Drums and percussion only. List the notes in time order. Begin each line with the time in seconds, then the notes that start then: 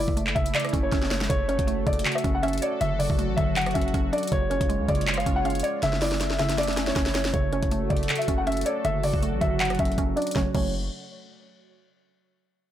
0.08 kick
0.17 closed hi-hat
0.27 clap
0.36 kick, closed hi-hat
0.46 closed hi-hat
0.55 clap, closed hi-hat
0.60 closed hi-hat
0.65 cross-stick, closed hi-hat
0.69 closed hi-hat
0.73 kick, closed hi-hat
0.92 kick, snare, closed hi-hat
1.02 snare
1.11 snare, closed hi-hat
1.21 snare
1.30 kick, closed hi-hat
1.49 closed hi-hat
1.59 kick, closed hi-hat
1.68 closed hi-hat
1.87 kick, closed hi-hat
1.93 closed hi-hat
1.99 closed hi-hat
2.05 clap, closed hi-hat
2.12 cross-stick, closed hi-hat
2.18 closed hi-hat
2.24 kick, closed hi-hat
2.43 closed hi-hat
2.48 closed hi-hat
2.53 closed hi-hat
2.58 closed hi-hat
2.62 closed hi-hat
2.81 closed hi-hat
3.00 open hi-hat
3.10 kick
3.19 closed hi-hat
3.38 kick, closed hi-hat
3.56 clap, closed hi-hat
3.61 closed hi-hat
3.66 cross-stick, closed hi-hat
3.71 closed hi-hat
3.75 kick, closed hi-hat
3.82 closed hi-hat
3.88 closed hi-hat
3.94 kick, closed hi-hat
4.13 closed hi-hat
4.18 closed hi-hat
4.23 closed hi-hat
4.27 closed hi-hat
4.32 kick, closed hi-hat
4.51 closed hi-hat
4.61 kick, closed hi-hat
4.70 closed hi-hat
4.89 kick, closed hi-hat
4.95 closed hi-hat
5.01 closed hi-hat
5.07 clap, closed hi-hat
5.14 cross-stick, closed hi-hat
5.20 closed hi-hat
5.26 kick, closed hi-hat
5.45 closed hi-hat
5.50 closed hi-hat
5.55 closed hi-hat
5.60 closed hi-hat
5.64 closed hi-hat
5.83 snare, closed hi-hat
5.93 snare
6.02 snare, open hi-hat
6.12 snare
6.21 snare, closed hi-hat
6.30 snare
6.39 snare, closed hi-hat
6.49 snare, closed hi-hat
6.58 snare, closed hi-hat
6.63 closed hi-hat
6.68 snare, closed hi-hat
6.73 closed hi-hat
6.77 snare, closed hi-hat
6.87 snare
6.96 kick, snare, closed hi-hat
7.06 snare
7.15 snare, closed hi-hat
7.25 snare
7.34 kick, closed hi-hat
7.53 closed hi-hat
7.63 kick, closed hi-hat
7.71 closed hi-hat
7.90 kick, closed hi-hat
7.97 closed hi-hat
8.03 closed hi-hat
8.09 clap, closed hi-hat
8.15 closed hi-hat
8.22 closed hi-hat
8.28 kick, closed hi-hat
8.47 closed hi-hat
8.52 closed hi-hat
8.57 closed hi-hat
8.61 closed hi-hat
8.66 closed hi-hat
8.85 closed hi-hat
9.03 open hi-hat
9.14 kick
9.23 closed hi-hat
9.41 kick, closed hi-hat
9.60 clap, closed hi-hat
9.65 closed hi-hat
9.70 cross-stick, closed hi-hat
9.75 closed hi-hat
9.79 kick, closed hi-hat
9.85 closed hi-hat
9.92 closed hi-hat
9.98 kick, closed hi-hat
10.17 closed hi-hat
10.22 closed hi-hat
10.27 closed hi-hat
10.31 closed hi-hat
10.36 kick, snare
10.55 kick, crash